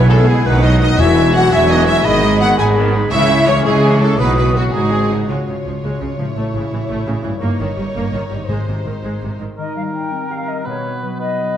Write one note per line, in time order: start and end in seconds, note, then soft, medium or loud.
0.00 0.40 B1 loud
0.00 0.40 B2 loud
0.00 0.42 B2 loud
0.00 0.45 B2 medium
0.00 0.46 E4 medium
0.00 0.10 B4 loud
0.00 0.11 B4 loud
0.00 0.48 G#5 medium
0.10 0.28 G#3 medium
0.10 0.48 G#3 medium
0.10 0.29 A3 loud
0.10 0.28 G#4 medium
0.10 0.28 A4 loud
0.10 0.18 A4 medium
0.27 0.35 G#3 medium
0.27 0.46 B3 medium
0.27 0.46 E4 medium
0.27 0.48 E4 medium
0.27 0.46 G#4 loud
0.27 0.36 G#4 loud
0.27 0.81 B4 medium
0.45 0.93 B1 loud
0.45 0.93 B2 loud
0.45 1.01 B2 medium
0.45 0.63 D#3 medium
0.45 0.63 B3 loud
0.45 0.98 D#4 loud
0.45 0.63 D#4 medium
0.45 0.63 B4 loud
0.45 0.64 B4 loud
0.45 0.99 F#5 medium
0.60 0.81 F#3 medium
0.60 0.80 D#4 loud
0.60 0.81 F#4 medium
0.60 0.80 D#5 loud
0.60 0.69 D#5 loud
0.64 2.07 F#3 medium
0.64 0.79 D#5 loud
0.81 0.99 D#3 medium
0.81 0.99 D#4 medium
0.81 0.98 D#4 loud
0.81 1.01 D#4 medium
0.81 1.70 B4 medium
0.81 0.87 D#5 loud
0.81 0.98 D#5 loud
0.81 0.99 D#5 loud
0.98 1.46 E1 loud
0.98 1.48 E2 loud
0.98 1.46 E2 loud
0.98 2.07 E2 medium
0.98 1.15 E3 medium
0.98 1.15 B3 medium
0.98 1.34 E4 loud
0.98 1.48 F#4 loud
0.98 1.34 E5 loud
0.98 1.35 E5 loud
0.98 1.49 G#5 medium
1.16 2.07 B2 medium
1.16 1.34 F#3 medium
1.16 1.34 G#3 medium
1.33 1.52 E3 medium
1.33 2.40 G#3 medium
1.33 1.52 B3 medium
1.33 1.51 F#4 loud
1.33 1.52 F#5 loud
1.33 1.43 F#5 loud
1.51 1.99 E1 loud
1.51 1.99 E2 loud
1.51 1.69 F#3 medium
1.51 1.69 G#3 medium
1.51 1.60 E4 loud
1.51 2.04 F#4 loud
1.51 1.87 F#4 medium
1.51 1.69 E5 loud
1.51 2.07 G#5 loud
1.68 1.86 E3 medium
1.68 1.86 B3 medium
1.68 1.77 D#4 loud
1.68 2.77 B4 medium
1.68 1.87 D#5 loud
1.68 1.88 D#5 loud
1.86 2.05 F#3 medium
1.86 2.05 G#3 medium
1.86 2.04 E4 loud
1.86 2.07 F#4 medium
1.86 2.04 E5 loud
1.86 2.05 E5 loud
2.04 2.53 G#1 loud
2.04 2.53 G#2 loud
2.04 3.13 G#2 medium
2.04 2.22 D#3 medium
2.04 2.22 B3 medium
2.04 2.41 D#4 loud
2.04 2.57 G#4 medium
2.04 2.39 D#5 loud
2.04 2.40 D#5 loud
2.04 2.41 D#5 loud
2.04 2.58 B5 medium
2.24 3.13 D#3 medium
2.24 2.41 G#3 medium
2.24 2.41 D#4 medium
2.38 2.59 D#3 medium
2.38 3.47 G#3 medium
2.38 2.59 B3 medium
2.38 2.59 F#4 loud
2.38 2.57 F#5 loud
2.38 2.48 F#5 loud
2.38 2.58 F#5 loud
2.57 3.06 G#1 loud
2.57 3.06 G#2 loud
2.57 2.76 G#3 medium
2.57 2.76 D#4 medium
2.57 3.11 G#4 medium
2.57 2.76 G#4 loud
2.57 2.94 G#4 medium
2.57 2.63 G#5 loud
2.57 2.66 G#5 loud
2.57 2.67 G#5 medium
2.57 3.11 B5 medium
2.76 2.93 D#3 medium
2.76 2.93 B3 medium
2.76 3.14 B4 medium
2.94 3.12 G#3 medium
2.94 3.12 D#4 medium
2.94 4.21 G#4 medium
3.11 3.60 C#2 loud
3.11 3.59 C#3 loud
3.11 4.21 C#3 medium
3.11 3.28 E3 medium
3.11 3.28 C#4 medium
3.11 3.46 E4 loud
3.11 3.62 G#4 medium
3.11 3.45 E5 loud
3.11 3.61 C#6 medium
3.29 3.47 G#3 medium
3.29 4.21 C#4 medium
3.29 3.47 E4 medium
3.47 3.65 E3 medium
3.47 4.21 G#3 medium
3.47 3.65 C#4 medium
3.47 3.66 C#4 loud
3.47 3.65 C#5 loud
3.47 3.54 C#5 loud
3.47 3.66 C#5 loud
3.64 4.14 C#2 medium
3.64 4.13 C#3 loud
3.64 4.01 G#3 loud
3.64 3.83 G#3 medium
3.64 4.00 E4 medium
3.64 3.83 E4 medium
3.64 4.00 G#4 loud
3.64 4.22 G#4 medium
3.64 4.01 G#4 medium
3.64 4.20 C#6 medium
3.82 3.99 E3 medium
3.82 3.99 C#4 medium
3.82 4.21 C#5 medium
3.99 4.19 G#3 medium
3.99 4.17 A3 medium
3.99 4.19 E4 medium
3.99 4.21 E4 medium
3.99 4.18 A4 loud
3.99 4.19 A4 medium
4.18 4.68 B1 medium
4.18 4.75 B2 medium
4.18 4.68 B2 medium
4.18 4.36 F#3 medium
4.18 4.33 B3 medium
4.18 4.35 D#4 medium
4.18 4.58 F#4 medium
4.18 4.36 B4 loud
4.18 4.35 B4 loud
4.18 4.36 B4 loud
4.18 4.57 D#6 medium
4.34 4.54 B3 medium
4.34 4.55 B3 medium
4.34 4.76 B3 medium
4.34 4.55 F#4 medium
4.34 4.55 B4 medium
4.39 4.56 B4 medium
4.55 4.74 F#3 medium
4.55 4.73 D#4 medium
4.55 4.74 F#4 medium
4.55 4.63 F#4 loud
4.55 5.10 F#4 medium
4.73 5.24 G#1 medium
4.73 5.23 G#2 medium
4.73 5.31 G#2 medium
4.73 5.28 G#3 medium
4.73 4.91 D#4 medium
4.73 4.91 F#4 medium
4.73 5.11 F#4 medium
4.73 5.29 G#4 medium
4.73 5.28 G#4 medium
4.73 5.10 D#6 medium
4.92 5.31 C4 medium
4.92 5.12 C4 medium
4.92 5.11 G#4 medium
5.10 6.28 C#3 soft
5.10 5.29 D#4 medium
5.10 5.29 F#4 medium
5.10 5.31 F#4 medium
5.10 5.31 D#5 medium
5.15 6.30 G#3 soft
5.19 6.32 F4 soft
5.24 6.30 C#5 soft
5.29 5.37 C#2 soft
5.29 5.36 C#3 soft
5.29 5.46 G#3 soft
5.29 6.32 F4 soft
5.29 7.37 C#5 soft
5.47 5.54 C#2 soft
5.47 5.54 C#3 soft
5.47 5.55 C#3 soft
5.65 5.73 C#2 soft
5.65 5.72 C#3 soft
5.65 5.73 F3 soft
5.83 5.91 C#2 medium
5.83 5.90 C#3 medium
5.83 5.99 G#3 soft
6.01 6.08 C#2 soft
6.01 6.08 C#3 soft
6.17 6.25 C#2 soft
6.17 7.34 A2 soft
6.17 6.26 C#3 soft
6.17 6.26 F3 soft
6.22 7.36 A3 soft
6.27 7.39 E4 soft
6.31 7.36 C#5 soft
6.36 6.43 A1 medium
6.36 6.43 A2 medium
6.36 6.53 A3 medium
6.36 7.42 E4 soft
6.53 6.60 A1 soft
6.53 6.61 A2 soft
6.53 6.62 C#3 soft
6.71 6.78 A1 soft
6.71 6.78 A2 soft
6.71 6.80 E3 soft
6.88 6.96 A1 medium
6.88 6.95 A2 medium
6.88 7.05 A3 medium
7.06 7.14 A1 soft
7.06 7.13 A2 soft
7.06 7.14 C#3 medium
7.23 7.31 A1 soft
7.23 8.42 G2 soft
7.23 7.31 A2 medium
7.23 7.30 E3 medium
7.28 8.44 A#3 soft
7.33 8.38 D#4 soft
7.37 7.58 A#3 medium
7.37 8.49 C#5 soft
7.37 8.47 C#5 medium
7.42 7.49 G1 medium
7.42 7.49 G2 medium
7.42 9.37 D#4 medium
7.60 7.67 G1 soft
7.60 7.67 G2 medium
7.60 7.67 D#3 soft
7.76 7.84 G1 soft
7.76 7.86 G2 soft
7.76 7.83 G3 soft
7.95 8.03 G1 medium
7.95 8.03 G2 medium
7.95 8.12 A#3 medium
8.13 8.21 G1 soft
8.13 8.21 G2 soft
8.13 8.20 D#3 soft
8.30 8.40 G1 soft
8.30 8.39 G2 soft
8.30 9.50 G#2 soft
8.30 8.37 G3 soft
8.35 9.52 G#3 soft
8.39 9.93 D#4 soft
8.44 9.57 C5 soft
8.48 8.58 G#1 soft
8.48 9.00 G#2 medium
8.48 8.57 G#2 soft
8.48 8.66 G#3 soft
8.48 9.40 C5 soft
8.68 8.76 G#1 soft
8.68 8.75 G#2 soft
8.68 8.75 C3 soft
8.85 8.94 G#1 soft
8.85 8.92 G#2 soft
8.85 8.93 D#3 soft
9.03 9.12 G#1 soft
9.03 9.11 G#2 soft
9.03 9.20 G#3 soft
9.21 9.30 G#1 soft
9.21 9.28 G#2 soft
9.21 9.30 C3 soft
9.39 9.49 G#1 soft
9.39 9.47 G#2 soft
9.39 9.47 D#3 soft
9.58 10.66 D#3 soft
9.58 10.13 D#4 soft
9.58 10.66 A#4 soft
9.58 9.75 D#5 medium
9.76 10.66 G3 soft
9.76 9.82 F5 medium
9.94 11.19 D#4 soft
9.94 10.29 G5 medium
10.12 10.65 C4 soft
10.12 10.47 A#4 soft
10.30 10.67 G4 soft
10.30 10.48 F5 medium
10.48 10.67 A#4 soft
10.48 10.66 D#5 medium
10.65 11.57 B2 soft
10.65 11.57 B3 medium
10.65 11.18 B4 soft
10.65 11.01 C#5 medium
10.84 11.57 B3 soft
11.02 11.57 F#3 soft
11.02 11.08 B4 medium
11.18 11.54 D#4 soft
11.18 11.57 B4 soft
11.18 11.57 D#5 medium
11.38 11.57 B4 soft